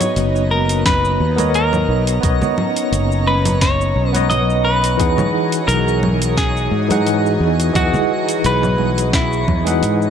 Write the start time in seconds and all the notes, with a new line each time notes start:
Already playing: B3 D#4 F#4 C#5 D#5 A#5
0.01 open hi-hat, low conga, shaker
0.16 F#1, open hi-hat, shaker
0.36 shaker
0.51 A#4, high conga
0.69 open hi-hat, shaker
0.86 B4, kick, snare, open hi-hat, low conga, shaker
1.05 shaker
1.20 D#2
1.36 B3 A#4 C#5 D#5, open hi-hat, high conga, shaker
1.54 A#4, open hi-hat, shaker
1.73 low conga, shaker
1.88 B1
2.07 open hi-hat, shaker
2.20 B1 B3 C#4 B4 C#5 D#5, kick, open hi-hat, shaker
2.42 high conga, low conga, shaker
2.58 low conga
2.76 open hi-hat, shaker
2.92 F#1, open hi-hat, shaker
3.12 shaker
3.27 B4, high conga
3.45 open hi-hat, low conga, shaker
3.61 C#5, kick, snare, open hi-hat, shaker
3.81 shaker
3.96 B1
4.11 B3 B4, open hi-hat, high conga
4.15 C#5 D#5, shaker
4.30 D#5, open hi-hat, low conga, shaker
4.50 shaker
4.65 B4
4.84 open hi-hat, shaker
4.97 E2 E3 D#4 F#4 G#4 D#5 F#5, kick, open hi-hat, shaker
5.18 high conga, low conga, shaker
5.52 open hi-hat, shaker
5.68 B1 A#4, open hi-hat, shaker
5.88 shaker
6.03 high conga, low conga
6.22 open hi-hat, shaker
6.37 G#4, kick, snare, open hi-hat, shaker
6.57 shaker
6.71 G#2
6.88 E3 D#4 G#4 F#5, open hi-hat, high conga, low conga, shaker
7.07 open hi-hat, shaker
7.26 shaker
7.40 E2
7.60 open hi-hat, shaker
7.73 E2 E3 F#4 G#4 D#5, kick, open hi-hat, low conga, shaker
7.77 F#5
7.94 high conga, low conga, shaker
8.29 open hi-hat, shaker
8.44 B1 B4, open hi-hat, shaker
8.63 low conga, shaker
8.78 high conga
8.98 open hi-hat, shaker
9.13 E4, kick, snare, open hi-hat, shaker
9.33 shaker
9.48 E2, kick, low conga
9.64 E3 D#4 G#4 F#5, open hi-hat, high conga, shaker
9.82 G#2, open hi-hat, shaker
10.02 shaker